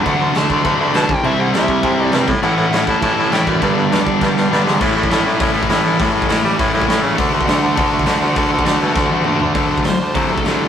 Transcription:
0.04 baritone saxophone D2, overdriven electric guitar D3 F#3 A3 D4, kick, crash
0.08 lead electric guitar F#5
0.20 baritone saxophone D2
0.35 baritone saxophone D2, overdriven electric guitar D3 F#3 A3 D4, lead electric guitar A5, snare, crash
0.50 baritone saxophone D2, lead electric guitar B5, kick
0.64 baritone saxophone D2, overdriven electric guitar D3 F#3 A3 D4, kick, crash
0.80 baritone saxophone D2, lead electric guitar B5
0.94 baritone saxophone B2, overdriven electric guitar D3 F#3 A3 D4, lead electric guitar A5, snare, crash
1.08 baritone saxophone C2, distorted electric guitar C3 G3 C4, lead electric guitar G5, kick
1.24 baritone saxophone C2, overdriven electric guitar C3 G3 C4 E4, lead electric guitar E5, crash
1.39 baritone saxophone C2, lead electric guitar F#5
1.53 baritone saxophone C2, overdriven electric guitar C3 G3 C4 E4, lead electric guitar E5, snare, crash
1.68 baritone saxophone C2, kick
1.83 baritone saxophone C2, overdriven electric guitar C3 G3 C4 E4, kick, crash
1.98 baritone saxophone C2
2.06 lead electric guitar D5
2.12 baritone saxophone G2, overdriven electric guitar C3 G3 C4 E4, snare, crash
2.27 distorted electric guitar A2 E3 A3, baritone saxophone A2, kick
2.42 baritone saxophone A2, overdriven electric guitar A2 E3 A3 C#4 E4, lead electric guitar F#5, crash
2.57 baritone saxophone A2
2.72 baritone saxophone A2, overdriven electric guitar A2 E3 A3 C#4 E4, lead electric guitar F#5, snare, crash
2.87 baritone saxophone A2, lead electric guitar A5, kick
3.01 overdriven electric guitar A2 E3 A3 C#4 E4, baritone saxophone A2, lead electric guitar A5, kick, crash
3.19 baritone saxophone A2
3.31 baritone saxophone A2, overdriven electric guitar A2 E3 A3 C#4 E4, lead electric guitar G5, snare, crash
3.47 baritone saxophone F#2, lead electric guitar D5, kick
3.61 overdriven electric guitar G2 D3 G3 B3 D4, baritone saxophone G2, kick, crash
3.77 baritone saxophone G2
3.92 baritone saxophone G2, overdriven electric guitar G2 D3 G3 B3 D4, snare, crash
4.07 kick
4.20 overdriven electric guitar G2 D3 G3 B3 D4, baritone saxophone G2, kick, snare
4.37 baritone saxophone G2, snare
4.51 baritone saxophone G2, overdriven electric guitar G2 D3 G3 B3 D4, snare
4.65 distorted electric guitar G2 D3 G3, baritone saxophone G#2, snare
4.80 overdriven electric guitar A2 E3 A3 C#4 E4, baritone saxophone A2, kick, crash
4.97 baritone saxophone A2
5.03 kick
5.10 baritone saxophone A2, overdriven electric guitar A2 E3 A3 C#4 E4, snare, open hi-hat
5.25 baritone saxophone A2
5.40 overdriven electric guitar A2 E3 A3 C#4 E4, baritone saxophone A2, kick, open hi-hat
5.53 baritone saxophone A2, distorted electric guitar E3 A3
5.58 distorted electric guitar A2
5.63 kick
5.69 baritone saxophone A2, overdriven electric guitar A2 E3 A3 C#4 E4, snare, open hi-hat
5.83 baritone saxophone A2
5.99 overdriven electric guitar A2 E3 A3 C#4 E4, baritone saxophone A2, kick, open hi-hat
6.14 baritone saxophone A2
6.22 kick
6.28 baritone saxophone A2, overdriven electric guitar A2 E3 A3 C#4 E4, snare, open hi-hat
6.45 baritone saxophone G3
6.58 overdriven electric guitar A2 E3 A3 C#4 E4, baritone saxophone A2, kick, open hi-hat
6.73 baritone saxophone A2, distorted electric guitar A2 E3 A3
6.82 kick
6.87 baritone saxophone A2, overdriven electric guitar A2 E3 A3 C#4 E4, snare, open hi-hat
7.03 baritone saxophone C#3
7.16 baritone saxophone D2, overdriven electric guitar D3 A3 D4 F#4, kick, open hi-hat
7.34 baritone saxophone D2
7.41 kick
7.45 baritone saxophone D2, overdriven electric guitar D3 A3 D4 F#4, snare, open hi-hat
7.62 baritone saxophone D2
7.75 baritone saxophone D2, overdriven electric guitar D3 A3 D4 F#4, kick, open hi-hat
7.92 baritone saxophone D2, distorted electric guitar D3 A3 D4
7.99 kick
8.05 baritone saxophone D2, overdriven electric guitar D3 A3 D4 F#4, snare, open hi-hat
8.21 baritone saxophone D2
8.36 baritone saxophone D2, overdriven electric guitar D3 A3 D4 F#4, kick, open hi-hat
8.52 baritone saxophone D2
8.59 kick
8.65 baritone saxophone D2, overdriven electric guitar D3 A3 D4 F#4, snare, open hi-hat
8.81 baritone saxophone B2
8.94 baritone saxophone D2, overdriven electric guitar D3 A3 D4 F#4, kick, snare
9.10 baritone saxophone D2, distorted electric guitar A3 D4, high tom
9.14 distorted electric guitar D3
9.24 baritone saxophone D2, overdriven electric guitar D3 A3 D4 F#4, mid tom
9.40 baritone saxophone D2, floor tom
9.55 baritone saxophone D2, overdriven electric guitar D3 F#3 A3, distorted electric guitar D4, kick, open hi-hat
9.70 baritone saxophone D2
9.78 kick
9.84 baritone saxophone D2, overdriven electric guitar D3 F#3, distorted electric guitar A3, lead electric guitar C5, snare, open hi-hat
9.99 baritone saxophone D2, distorted electric guitar D3 A3 D4
10.15 baritone saxophone C2, overdriven electric guitar D3 F#3 A3, distorted electric guitar D4, kick, open hi-hat
10.32 lead electric guitar A4
10.38 kick
10.45 baritone saxophone C2, overdriven electric guitar D3 F#3 A3, distorted electric guitar D4, snare, open hi-hat

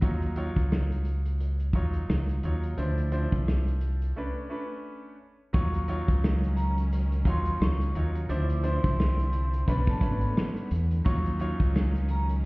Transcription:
0.01 fingered electric bass D#2, grand piano F#3 D#4 F4 C#5, kick, closed hi-hat
0.22 closed hi-hat
0.36 grand piano F#3 D#4 F4 C#5, closed hi-hat
0.56 fingered electric bass C#2, kick, closed hi-hat
0.72 cross-stick, snare
0.92 closed hi-hat
1.05 closed hi-hat
1.26 closed hi-hat
1.40 closed hi-hat
1.60 closed hi-hat
1.73 fingered electric bass D#2, grand piano F#3 D#4 F4 C#5, kick, closed hi-hat
1.93 closed hi-hat
2.10 fingered electric bass C#2, cross-stick, snare
2.29 closed hi-hat
2.43 fingered electric bass D#2, grand piano F#3 D#4 F4 C#5, closed hi-hat
2.63 closed hi-hat
2.77 fingered electric bass D2, grand piano F3 D4 E4 C5, closed hi-hat
2.98 closed hi-hat
3.12 grand piano F3 D4 E4 C5, closed hi-hat
3.32 fingered electric bass C2, kick, closed hi-hat
3.48 cross-stick, snare
3.68 closed hi-hat
3.81 closed hi-hat
4.02 closed hi-hat
4.16 grand piano A3 C#4 D4 B4
4.50 grand piano A3 C#4 D4 B4
5.53 fingered electric bass D#2, string section D#3 F#3 C#4, grand piano F#3 D#4 F4 C#5, vibraphone C#6, kick, closed hi-hat, shaker
5.74 closed hi-hat
5.88 grand piano F#3 D#4 F4 C#5, closed hi-hat, shaker
6.08 fingered electric bass C#2, kick, closed hi-hat, shaker
6.23 cross-stick, snare, shaker
6.44 closed hi-hat
6.56 vibraphone A#5, closed hi-hat, shaker
6.77 closed hi-hat, shaker
6.92 closed hi-hat, shaker
7.12 closed hi-hat
7.25 fingered electric bass D#2, grand piano F#3 D#4 F4 C#5, vibraphone C6, kick, closed hi-hat, shaker
7.45 closed hi-hat
7.61 fingered electric bass C#2, vibraphone C#6, cross-stick, snare, shaker
7.81 closed hi-hat
7.95 fingered electric bass D#2, grand piano F#3 D#4 F4 C#5, closed hi-hat, shaker
8.15 closed hi-hat
8.29 fingered electric bass D2, string section D3 C4 E4, grand piano F3 D4 E4 C5, vibraphone D6, closed hi-hat, shaker
8.50 closed hi-hat
8.63 grand piano F3 D4 E4 C5, vibraphone C6, closed hi-hat, shaker
8.84 fingered electric bass C2, kick, closed hi-hat, shaker
8.99 cross-stick, snare, shaker
9.19 closed hi-hat
9.33 closed hi-hat, shaker
9.53 closed hi-hat, shaker
9.67 fingered electric bass B1, string section D3 A3 B3, grand piano A3 C#4 D4 B4, vibraphone B5, kick, closed hi-hat, shaker
9.87 vibraphone A5, kick, snare, closed hi-hat
10.00 fingered electric bass G#1, grand piano A3 C#4 D4 B4, vibraphone B5, kick, closed hi-hat, shaker
10.21 closed hi-hat
10.37 cross-stick, snare, shaker
10.57 closed hi-hat
10.71 fingered electric bass E2, closed hi-hat, shaker
10.91 closed hi-hat
11.05 fingered electric bass D#2, string section D#3 F#3 C#4, grand piano F#3 D#4 F4 C#5, vibraphone C#6, kick, closed hi-hat, shaker
11.26 closed hi-hat
11.39 grand piano F#3 D#4 F4 C#5, closed hi-hat, shaker
11.60 fingered electric bass C#2, kick, closed hi-hat, shaker
11.75 cross-stick, snare, shaker
11.95 closed hi-hat
12.09 vibraphone A#5, closed hi-hat, shaker
12.29 closed hi-hat, shaker

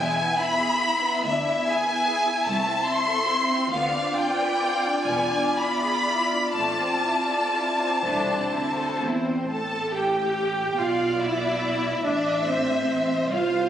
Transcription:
Already playing: violin section G#3 E5 G#5
0.00 double bass section E1, cello section E2, viola section B3 E4
0.18 violin section B3
0.40 violin section E4 B5
0.61 violin section G#4
0.81 violin section E4
1.02 violin section B3
1.24 double bass section D2, cello section D2, violin section D4 E5
1.46 violin section E4
1.66 violin section G#4 G#5
1.86 violin section B4
2.07 violin section G#4
2.28 violin section E4
2.46 double bass section C2, cello section C2, violin section A3 A5, viola section C4
2.67 violin section C4
2.86 violin section E4 C6
3.08 violin section A4
3.28 violin section E4
3.49 violin section C4
3.71 cello section D2, double bass section D2, violin section B3 D5 F5, viola section F4
3.94 violin section D4
4.16 violin section F4 G5
4.41 violin section B4
4.63 violin section F4
4.85 violin section D4
5.07 double bass section E1, cello section E2, viola section B3, violin section B3 G#5
5.34 violin section D4
5.55 violin section E4 B5
5.82 violin section G#4
6.06 violin section E4
6.33 violin section D4
6.55 double bass section A1, cello section A2, violin section A3 A5, viola section C4
6.81 violin section C4
7.05 violin section E4
7.30 violin section A4
7.54 violin section E4
7.80 violin section C4
8.03 double bass section E1, cello section C2, violin section A3 C5 D5, viola section D4 E4
8.27 violin section C4
8.51 cello section D2, viola section C4, violin section E4 C5
8.76 violin section A4
9.03 cello section E2, violin section E4
9.26 violin section C4
9.49 double bass section A1, cello section A2, viola section A4, violin section A5
9.93 viola section G4, violin section G5
10.80 double bass section B1, cello section B2, viola section F4, violin section D5 F5
11.21 viola section E4, violin section E5
12.05 double bass section A1, cello section A2, viola section D4, violin section D5 E5
12.47 viola section C4, violin section C5
13.32 cello section C2, double bass section C2, viola section F4, violin section C5 F5

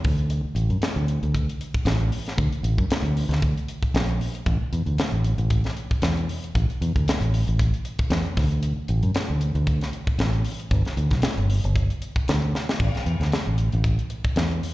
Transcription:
0.04 fingered electric bass D2, kick, open hi-hat
0.18 closed hi-hat
0.30 closed hi-hat
0.45 muted fingered electric bass stroke
0.55 fingered electric bass A1, closed hi-hat
0.70 fingered electric bass F#2, closed hi-hat
0.81 muted fingered electric bass stroke, snare, closed hi-hat
0.96 fingered electric bass D2
1.08 closed hi-hat
1.23 fingered electric bass D2, closed hi-hat
1.35 kick, closed hi-hat
1.49 closed hi-hat
1.61 closed hi-hat
1.74 kick, closed hi-hat
1.85 fingered electric bass A1, snare, closed hi-hat
2.00 closed hi-hat
2.12 open hi-hat
2.27 snare, closed hi-hat
2.37 fingered electric bass D2, kick, closed hi-hat
2.52 muted fingered electric bass stroke, closed hi-hat
2.63 fingered electric bass A1, closed hi-hat
2.78 fingered electric bass F#2, kick, closed hi-hat
2.89 muted fingered electric bass stroke, snare, closed hi-hat
3.02 fingered electric bass D2, closed hi-hat
3.17 open hi-hat
3.29 fingered electric bass D2, snare, closed hi-hat
3.42 kick, closed hi-hat
3.58 closed hi-hat
3.68 closed hi-hat
3.83 kick, closed hi-hat
3.94 fingered electric bass A#1, snare, closed hi-hat
4.09 closed hi-hat
4.21 open hi-hat
4.35 closed hi-hat
4.46 fingered electric bass A1, kick, closed hi-hat
4.61 muted fingered electric bass stroke
4.72 fingered electric bass E2, closed hi-hat
4.86 fingered electric bass D2, closed hi-hat
4.98 muted fingered electric bass stroke, snare, closed hi-hat
5.12 fingered electric bass A1
5.24 closed hi-hat
5.38 fingered electric bass A1, closed hi-hat
5.50 kick, closed hi-hat
5.64 snare, closed hi-hat
5.77 closed hi-hat
5.91 kick, closed hi-hat
6.02 fingered electric bass E2, snare, closed hi-hat
6.17 closed hi-hat
6.29 open hi-hat
6.44 closed hi-hat
6.55 fingered electric bass A1, kick, closed hi-hat
6.69 muted fingered electric bass stroke, closed hi-hat
6.81 fingered electric bass E2, closed hi-hat
6.96 fingered electric bass D2, kick, closed hi-hat
7.08 muted fingered electric bass stroke, snare, closed hi-hat
7.21 fingered electric bass A1, closed hi-hat
7.34 open hi-hat
7.47 fingered electric bass A1, closed hi-hat
7.59 kick, closed hi-hat
7.74 closed hi-hat
7.85 closed hi-hat
7.99 kick, closed hi-hat
8.10 fingered electric bass E2, snare, closed hi-hat
8.25 closed hi-hat
8.37 fingered electric bass D2, kick, snare, open hi-hat
8.51 closed hi-hat
8.63 closed hi-hat
8.77 muted fingered electric bass stroke
8.88 fingered electric bass A1, closed hi-hat
9.03 fingered electric bass F#2, closed hi-hat
9.15 muted fingered electric bass stroke, snare, closed hi-hat
9.30 fingered electric bass D2
9.41 closed hi-hat
9.55 fingered electric bass D2, closed hi-hat
9.67 kick, closed hi-hat
9.81 snare, closed hi-hat
9.93 closed hi-hat
10.07 kick, closed hi-hat
10.18 fingered electric bass A1, snare, closed hi-hat
10.33 closed hi-hat
10.45 open hi-hat
10.60 closed hi-hat
10.71 fingered electric bass G1, kick, closed hi-hat
10.85 snare, closed hi-hat
10.97 fingered electric bass D2, closed hi-hat
11.11 fingered electric bass B1, kick, snare, closed hi-hat
11.22 muted fingered electric bass stroke, snare, closed hi-hat
11.37 fingered electric bass G1, closed hi-hat
11.50 open hi-hat
11.64 fingered electric bass G1, closed hi-hat
11.76 kick, closed hi-hat
11.90 closed hi-hat
12.02 closed hi-hat
12.16 kick, closed hi-hat
12.28 fingered electric bass D2, snare, closed hi-hat
12.42 closed hi-hat
12.55 snare
12.69 snare
12.80 fingered electric bass A1, kick, crash
12.95 snare, closed hi-hat
13.06 fingered electric bass E2, closed hi-hat
13.20 fingered electric bass D2, snare, closed hi-hat
13.32 muted fingered electric bass stroke, snare, closed hi-hat
13.47 fingered electric bass A1
13.58 closed hi-hat
13.72 fingered electric bass A1, closed hi-hat
13.84 kick, closed hi-hat
13.99 closed hi-hat
14.10 closed hi-hat
14.24 kick, closed hi-hat
14.36 fingered electric bass E2, snare, closed hi-hat
14.51 closed hi-hat
14.63 open hi-hat

